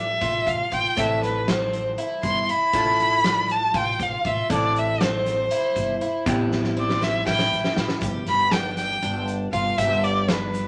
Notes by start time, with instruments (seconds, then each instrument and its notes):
Already playing: upright bass A1, hollow-body jazz guitar A3 D4 F4 A4, twelve-string acoustic guitar D4, violin E5
0.21 upright bass A1, twelve-string acoustic guitar F4, kick, closed hi-hat
0.47 upright bass A1, violin F5, kick, closed hi-hat, shaker
0.72 upright bass A1, twelve-string acoustic guitar F4, violin G5, kick, closed hi-hat, shaker
0.97 upright bass A1, hollow-body jazz guitar A3 C4 E4 A4, twelve-string acoustic guitar D4, violin E5, kick, closed hi-hat, shaker
1.22 violin B4, snare, closed hi-hat, shaker
1.48 twelve-string acoustic guitar C4, violin C5, snare, closed hi-hat
1.73 closed hi-hat
1.98 twelve-string acoustic guitar E4, closed hi-hat
2.23 upright bass G1, violin C6, kick, closed hi-hat, shaker
2.49 twelve-string acoustic guitar E4, violin B5, closed hi-hat
2.73 upright bass A1, hollow-body jazz guitar A3 D4 F4 A4, twelve-string acoustic guitar E4, kick, closed hi-hat, shaker
2.99 snare, closed hi-hat, shaker
3.24 twelve-string acoustic guitar D4, snare, closed hi-hat
3.49 violin A5, closed hi-hat
3.74 upright bass A1, twelve-string acoustic guitar F4, violin G5, kick, closed hi-hat
4.00 upright bass A1, violin F5, kick, closed hi-hat, shaker
4.25 upright bass A1, twelve-string acoustic guitar F4, violin E5, kick, closed hi-hat
4.50 upright bass A1, hollow-body jazz guitar A3 C4 E4 A4, twelve-string acoustic guitar D4, violin D5, kick, closed hi-hat, shaker
4.76 violin E5, closed hi-hat, shaker
5.01 twelve-string acoustic guitar C4, violin C5, snare, closed hi-hat
5.26 snare, closed hi-hat, shaker
5.51 twelve-string acoustic guitar E4, closed hi-hat
5.76 upright bass G1, kick, closed hi-hat, shaker
6.01 twelve-string acoustic guitar E4, closed hi-hat
6.26 upright bass A1, hollow-body jazz guitar B3 C4 E4 G4, twelve-string acoustic guitar D4, kick, closed hi-hat, shaker
6.52 snare
6.64 snare
6.77 twelve-string acoustic guitar C4, violin D5, shaker
6.89 snare
7.02 violin E5, snare, shaker
7.26 upright bass A1, twelve-string acoustic guitar E4, violin G5, kick, snare
7.39 snare
7.52 upright bass A1, shaker
7.64 snare
7.76 upright bass A1, twelve-string acoustic guitar E4, snare
7.88 snare
8.01 upright bass G1, twelve-string acoustic guitar G4, kick, closed hi-hat, shaker
8.26 upright bass G1, violin B5, snare, closed hi-hat
8.51 twelve-string acoustic guitar D4, violin G5, snare, closed hi-hat
8.77 violin G5, snare, closed hi-hat, shaker
9.02 upright bass G1, twelve-string acoustic guitar D4, closed hi-hat
9.28 closed hi-hat, shaker
9.53 upright bass G1, twelve-string acoustic guitar F4, violin F5, kick, closed hi-hat, shaker
9.78 upright bass G1, twelve-string acoustic guitar G4, violin E5, kick, closed hi-hat, shaker
10.04 violin D5, closed hi-hat
10.29 twelve-string acoustic guitar D4, violin B4, snare, closed hi-hat
10.54 closed hi-hat, shaker